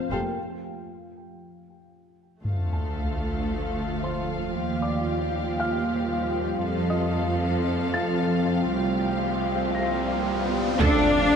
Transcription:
0.00 0.34 F3 medium
0.00 0.37 A3 medium
0.00 0.11 C4 soft
0.00 0.33 F4 medium
0.00 0.39 F4 soft
0.00 0.34 F5 medium
0.00 0.39 F5 soft
0.10 0.19 F1 soft
0.10 0.19 F2 soft
0.10 0.37 A#3 soft
0.10 0.36 G4 soft
0.10 0.20 A4 soft
0.10 0.19 C5 soft
0.10 0.19 F5 soft
0.10 0.36 G5 soft
2.44 4.50 D2 soft
2.44 4.50 F3 soft
2.44 4.50 A3 soft
2.44 4.50 A3 medium
2.44 8.67 F4 medium
2.44 6.59 F4 soft
2.44 4.51 A4 soft
2.44 8.67 F5 soft
2.44 6.60 F5 soft
2.44 sub drop soft
2.73 4.25 A5 soft
4.03 5.55 C5 soft
4.03 5.56 C6 soft
4.53 6.59 D#2 soft
4.53 8.71 F3 soft
4.53 6.63 G3 medium
4.53 6.63 A#3 medium
4.53 6.63 G4 soft
4.82 6.34 D5 soft
4.82 6.34 D6 soft
5.60 7.12 F5 soft
5.60 7.12 F6 soft
6.62 8.68 F2 medium
6.62 8.72 A3 medium
6.62 10.81 C4 medium
6.62 10.56 F4 medium
6.62 8.68 A4 soft
6.62 10.56 F5 medium
6.62 riser medium
6.90 8.42 D#5 soft
6.90 8.42 D#6 soft
7.94 9.46 A6 medium
8.71 10.57 C2 soft
8.71 10.57 F3 soft
8.71 10.81 G3 medium
8.71 10.76 F4 medium
8.71 10.56 G4 soft
8.71 10.77 F5 medium
9.75 10.76 A#6 soft
10.79 10.89 D2 medium
10.79 10.91 D2 medium
10.79 11.36 F3 medium
10.79 11.36 A3 medium
10.79 11.36 D4 loud
10.79 11.36 F4 medium
10.79 11.05 A4 medium
10.79 11.36 F5 medium
10.79 impact medium
11.32 11.36 D2 medium
11.32 11.36 D4 medium

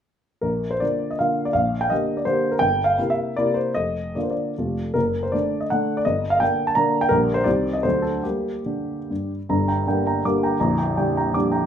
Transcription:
0.41 0.81 A#1 soft
0.41 0.71 A#4 medium
0.71 0.81 C5 medium
0.80 1.17 D3 soft
0.80 1.17 A#3 soft
0.80 1.17 F4 soft
0.80 1.10 D5 medium
1.11 1.20 D#5 medium
1.19 1.52 D3 soft
1.19 1.52 A#3 soft
1.19 1.52 F4 soft
1.19 1.46 F5 medium
1.45 1.55 D5 medium
1.53 1.90 A#1 soft
1.53 1.81 F5 medium
1.81 1.91 G5 medium
1.90 2.24 D3 soft
1.90 2.24 A#3 soft
1.90 2.24 G4 soft
1.90 2.18 D#5 medium
2.17 2.26 D5 soft
2.25 2.58 D3 soft
2.25 2.58 A#3 soft
2.25 2.58 G4 soft
2.25 2.52 C5 medium
2.52 2.61 A#4 medium
2.59 2.97 G1 soft
2.59 2.84 G5 medium
2.84 3.11 F5 medium
2.98 3.33 C3 soft
2.98 3.33 A#3 soft
2.98 3.33 E4 soft
3.10 3.36 E5 medium
3.37 3.72 C3 soft
3.37 3.72 A#3 soft
3.37 3.73 E4 soft
3.37 3.56 D5 medium
3.54 3.75 C5 medium
3.74 4.15 F1 soft
3.74 4.15 D#5 medium
4.15 4.53 D3 soft
4.15 4.53 A#3 soft
4.15 4.53 F4 soft
4.15 4.23 D5 soft
4.23 4.31 C5 soft
4.30 4.75 D5 soft
4.58 4.94 F1 soft
4.58 4.92 C3 soft
4.58 4.92 A3 soft
4.58 4.92 F4 soft
4.94 5.33 F#1 soft
4.94 5.23 A#4 medium
5.23 5.33 C5 medium
5.32 5.67 D3 soft
5.32 5.67 A3 soft
5.32 5.67 D4 soft
5.32 5.61 D5 medium
5.60 5.70 D#5 medium
5.70 6.03 D3 soft
5.70 6.03 A3 soft
5.70 6.03 D4 soft
5.70 5.97 F#5 medium
5.97 6.06 D5 medium
6.05 6.40 G1 medium
6.05 6.32 D#5 medium
6.30 6.40 F5 medium
6.40 6.73 D3 soft
6.40 6.73 A#3 soft
6.40 6.74 D4 soft
6.40 6.67 G5 medium
6.67 6.76 A5 medium
6.75 7.07 D3 soft
6.75 7.07 A#3 soft
6.75 7.07 D4 medium
6.75 7.01 A#5 medium
7.01 7.10 G5 medium
7.09 7.45 A#1 medium
7.09 7.42 D3 soft
7.09 7.42 G3 soft
7.09 7.43 D4 soft
7.09 7.35 A#4 medium
7.34 7.45 C5 medium
7.44 7.84 C2 soft
7.44 7.81 D#3 soft
7.44 7.81 G3 soft
7.44 7.82 C4 soft
7.44 7.74 D5 medium
7.73 7.84 D#5 medium
7.83 8.23 D2 soft
7.83 8.20 D3 soft
7.83 8.21 F#3 soft
7.83 8.21 A3 soft
7.83 8.03 C5 medium
8.02 8.23 A4 medium
8.23 8.54 G3 soft
8.23 8.59 A#3 soft
8.23 9.30 G4 medium
8.66 8.97 D3 soft
9.10 9.38 G2 soft
9.49 10.57 G1 soft
9.49 10.56 G2 medium
9.49 9.67 A#5 medium
9.68 9.85 G5 soft
9.68 9.85 A#5 soft
9.87 10.21 D3 soft
9.87 10.22 G3 soft
9.87 10.22 A#3 soft
9.87 10.05 G5 soft
10.07 10.23 G5 soft
10.07 10.23 A#5 soft
10.25 10.57 D3 soft
10.25 10.57 G3 soft
10.25 10.57 A#3 soft
10.25 10.53 D6 soft
10.43 10.59 G5 soft
10.43 10.58 A#5 soft
10.60 11.66 A#0 medium
10.60 11.66 A#1 medium
10.60 10.77 A#5 medium
10.78 10.95 G5 soft
10.78 10.95 A#5 soft
10.97 11.31 D3 soft
10.97 11.31 G3 soft
10.97 11.31 D4 soft
10.97 11.16 G5 soft
11.17 11.34 G5 soft
11.17 11.33 A#5 medium
11.34 11.66 D3 soft
11.34 11.66 G3 soft
11.34 11.66 D4 soft
11.34 11.62 D6 medium
11.52 11.66 G5 soft
11.52 11.66 A#5 soft

